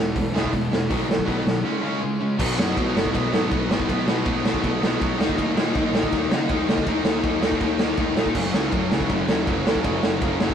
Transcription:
Already playing: picked electric bass E1, distorted electric guitar E2 B2 E3 G#3
0.14 picked electric bass E1, distorted electric guitar E2 B2 E3 G#3, kick, open hi-hat
0.33 picked electric bass E1, distorted electric guitar E2 B2 E3 G#3 B3, snare
0.44 kick
0.51 picked electric bass E1, distorted electric guitar E2 B2 E3 G#3, kick, open hi-hat
0.71 picked electric bass E1, distorted electric guitar E2 B2 E3 G#3, snare
0.89 picked electric bass B1, distorted electric guitar B2 D#3 F#3 B3, kick, open hi-hat
1.07 picked electric bass B1, distorted electric guitar B2 D#3 F#3 B3, snare
1.19 kick
1.25 picked electric bass B1, distorted electric guitar B2 D#3 F#3, kick, open hi-hat
1.29 distorted electric guitar B3
1.44 picked electric bass B1, distorted electric guitar B2 D#3 F#3 B3, snare
1.65 distorted electric guitar C#3 G#3 C#4
1.83 distorted electric guitar C#3 G#3 C#4
2.01 distorted electric guitar C#3 G#3 C#4
2.21 distorted electric guitar C#3 G#3 C#4
2.38 picked electric bass B1, distorted electric guitar B2 F#3 B3 D#4, kick, crash
2.56 picked electric bass F#2, distorted electric guitar B2 F#3 B3 D#4, snare
2.76 distorted electric guitar B2 F#3 B3 D#4, picked electric bass B2, kick, ride
2.94 picked electric bass F#1, distorted electric guitar B2 F#3 B3 D#4, snare
3.05 kick
3.12 picked electric bass B1, distorted electric guitar B2 F#3 B3 D#4, kick, ride
3.32 picked electric bass G#2, distorted electric guitar B2 F#3 B3 D#4, snare
3.51 picked electric bass B1, distorted electric guitar B2 F#3 B3 D#4, kick, ride
3.69 picked electric bass G#1, distorted electric guitar B2 F#3 B3 D#4, snare
3.80 kick
3.88 picked electric bass B1, distorted electric guitar B2 F#3 B3 D#4, kick, ride
4.06 picked electric bass B1, distorted electric guitar B2 F#3 B3 D#4, snare
4.25 picked electric bass B1, distorted electric guitar B2 F#3 B3 D#4, kick, ride
4.44 picked electric bass B1, distorted electric guitar B2 F#3 B3 D#4, snare
4.54 kick
4.63 picked electric bass B1, distorted electric guitar B2 F#3 B3 D#4, kick, ride
4.82 distorted electric guitar B2 F#3 B3 D#4, snare
5.00 picked electric bass B1, distorted electric guitar B2 F#3 B3 D#4, kick, ride
5.18 picked electric bass D#2, distorted electric guitar D#3 F#3 A#3 D#4, snare
5.29 kick
5.38 picked electric bass D#2, distorted electric guitar D#3 F#3 A#3 D#4, kick, ride
5.55 picked electric bass A#2, distorted electric guitar D#3 F#3 A#3 D#4, snare
5.75 distorted electric guitar D#3 F#3 A#3 D#4, picked electric bass D#3, kick, ride
5.91 picked electric bass A#1, distorted electric guitar D#3 F#3 A#3, snare
5.96 distorted electric guitar D#4
6.03 kick
6.12 picked electric bass D#2, distorted electric guitar D#3 F#3 A#3 D#4, kick, ride
6.30 picked electric bass C#3, distorted electric guitar D#3 F#3 A#3 D#4, snare
6.49 picked electric bass D#2, distorted electric guitar D#3 F#3 A#3 D#4, kick, ride
6.68 picked electric bass C#2, distorted electric guitar D#3 F#3 A#3 D#4, snare
6.78 kick
6.86 picked electric bass D#2, distorted electric guitar D#3 F#3 A#3 D#4, kick, ride
7.04 picked electric bass D#2, distorted electric guitar D#3 F#3 A#3 D#4, snare
7.22 picked electric bass D#2, distorted electric guitar D#3 F#3 A#3 D#4, kick, ride
7.41 picked electric bass D#2, distorted electric guitar D#3 F#3 A#3 D#4, snare
7.52 kick
7.60 picked electric bass D#2, distorted electric guitar D#3 F#3 A#3 D#4, kick, ride
7.79 distorted electric guitar D#3 F#3 A#3 D#4, snare
7.96 picked electric bass D#2, distorted electric guitar D#3 F#3 A#3 D#4, kick, ride
8.16 picked electric bass A#2, distorted electric guitar D#3 F#3 A#3 D#4, snare
8.26 kick
8.34 picked electric bass F#1, distorted electric guitar F#2 C#3 F#3 A#3 C#4, kick, crash
8.52 picked electric bass C#2, distorted electric guitar F#2 C#3 F#3 A#3 C#4, snare
8.71 distorted electric guitar F#2 C#3 F#3 A#3 C#4, picked electric bass F#2, kick, ride
8.90 picked electric bass C#2, distorted electric guitar F#2 C#3 F#3 A#3 C#4, snare
9.00 kick
9.09 picked electric bass F#1, distorted electric guitar F#2 C#3 F#3 A#3 C#4, kick, ride
9.27 picked electric bass D#2, distorted electric guitar F#2 C#3 F#3 A#3 C#4, snare
9.46 picked electric bass F#1, distorted electric guitar F#2 C#3 F#3 A#3 C#4, kick, ride
9.65 picked electric bass D#2, distorted electric guitar F#2 C#3 F#3 A#3 C#4, snare
9.75 kick
9.84 picked electric bass F#1, distorted electric guitar F#2 C#3 F#3 A#3 C#4, kick, ride
10.03 picked electric bass F#1, distorted electric guitar F#2 C#3 F#3 A#3 C#4, snare
10.21 picked electric bass F#1, distorted electric guitar F#2 C#3 F#3 A#3 C#4, kick, ride
10.40 picked electric bass F#1, distorted electric guitar F#2 C#3 F#3 A#3 C#4, snare
10.49 kick

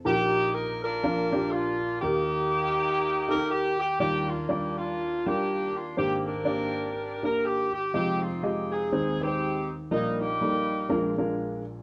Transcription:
0.05 grand piano A#1 A#2 D#4 F#4 A#4, saxophone section A#3 D#4 G4
0.11 grand piano G4
0.54 saxophone section A#4
0.82 saxophone section D4 F4 A#4
1.03 grand piano A#1 A#2 D4 F4 A#4
1.32 grand piano D4 F4 G4
1.51 saxophone section A#3 D4 F4
2.01 grand piano D#2 D#3 D#4 G4 A#4, saxophone section A#3 D#4 G4
3.28 grand piano D#4 G4 A4, saxophone section A#4
3.35 grand piano A#4
3.51 saxophone section G4
3.80 saxophone section G4
3.99 grand piano D#2 D#3 G3 D#4 F4 D5, saxophone section A#3 D4 G4
4.28 saxophone section F4
4.49 grand piano G3 D4 F4 D5, saxophone section G4
4.77 saxophone section A#3 D4 F4
5.26 grand piano G3 D4 F4 A#4, saxophone section A#3 D4 G4
5.76 saxophone section F4
5.97 grand piano G#1 G#2 A#3 D4 G4 C5, saxophone section A#3 C4 G4
6.26 saxophone section D4 G4 A#4
6.45 grand piano A#3 D4 G4 D5
7.23 grand piano A#3 D4 G4 A#4, saxophone section A#4
7.45 saxophone section G4
7.73 saxophone section G4
7.94 grand piano F1 F2 G#3 F4 G4 D#5, saxophone section C4 D#4 G4
8.22 saxophone section F4
8.43 grand piano G#3 F4 G4 D#5, saxophone section G4
8.72 saxophone section C4 D#4 G#4
8.92 grand piano D#2 D#3 G#3 C4 D#4 C5
9.21 grand piano G#3 C4 D#4 B4, saxophone section C4 D#4 G4
9.27 grand piano C5
9.91 grand piano A#1 A#2 G3 A#3 D#4 A#4, saxophone section G3 A#3 D#4
10.20 saxophone section A#3 D#4 G4
10.41 grand piano G3 A#3 D#4 A4
10.47 grand piano A#4
10.89 grand piano A#1 A#2 G#3 D4 F4 A#4
11.18 grand piano G#3 D4 F4 A#4

